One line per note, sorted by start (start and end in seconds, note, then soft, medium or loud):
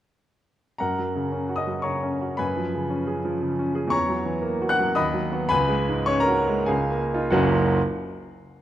0.78 2.37 F#2 soft
0.78 1.56 A#4 soft
0.78 1.56 F#5 medium
0.78 1.59 A#5 medium
0.99 1.27 F#3 soft
1.15 1.44 C#3 soft
1.32 1.61 C#4 soft
1.49 1.79 F#4 soft
1.56 1.84 D#5 medium
1.56 1.85 D#6 medium
1.67 1.97 F#3 soft
1.82 2.14 C#3 soft
1.82 2.35 C#5 soft
1.82 2.35 A#5 soft
1.82 2.38 C#6 medium
2.03 2.33 C#4 soft
2.21 2.40 F#4 soft
2.37 3.88 F#2 soft
2.37 3.63 B4 medium
2.37 3.63 G#5 soft
2.37 3.66 B5 medium
2.56 2.84 F3 soft
2.74 3.01 C#3 soft
2.90 3.18 C#4 soft
3.07 3.35 G#4 soft
3.25 3.52 F3 soft
3.42 3.69 C#3 soft
3.59 3.86 C#4 soft
3.75 3.92 G#4 soft
3.88 4.91 E2 medium
3.88 4.68 C#6 medium
3.92 4.65 C#5 medium
3.92 4.65 A#5 medium
4.08 4.36 F#3 soft
4.25 4.53 E3 soft
4.42 4.71 A#3 medium
4.62 4.90 F#4 medium
4.69 4.95 F#5 medium
4.69 4.97 F#6 loud
4.79 4.97 F#3 medium
4.95 5.50 D#2 medium
4.95 5.47 D#5 medium
4.95 5.47 B5 medium
4.95 5.51 D#6 medium
5.14 5.44 F#3 medium
5.32 5.49 B3 medium
5.32 5.49 F#4 soft
5.49 6.64 C#2 medium
5.49 6.03 B4 medium
5.49 6.02 G#5 medium
5.49 6.06 B5 loud
5.69 5.99 G#3 medium
5.89 6.19 G#2 medium
6.06 6.39 C#4 medium
6.06 6.21 C#5 medium
6.06 6.21 C#6 medium
6.20 6.64 A#4 medium
6.20 6.67 A#5 medium
6.28 6.60 F#4 medium
6.49 6.69 G#3 medium
6.66 7.30 C#2 medium
6.66 7.29 G#4 medium
6.66 7.29 F5 soft
6.66 7.32 G#5 medium
6.90 7.25 A#3 medium
7.14 7.32 D#4 medium
7.14 7.32 F4 medium
7.30 7.66 F#1 medium
7.30 7.66 C#2 medium
7.30 7.67 F#3 medium
7.30 7.67 A#3 medium
7.30 7.67 C#4 medium
7.30 7.67 F#4 medium
7.30 7.66 F#5 medium